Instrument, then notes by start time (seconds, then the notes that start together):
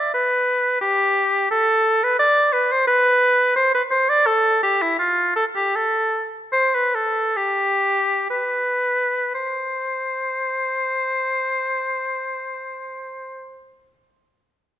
oboe
Already playing: D5
0.14 B4
0.81 G4
1.51 A4
2.03 B4
2.19 D5
2.53 B4
2.72 C5
2.87 B4
3.56 C5
3.74 B4
3.91 C5
4.09 D5
4.26 A4
4.63 G4
4.82 E4
4.99 F4
5.36 A4
5.56 G4
5.75 A4
6.52 C5
6.75 B4
6.95 A4
7.36 G4
8.30 B4
9.34 C5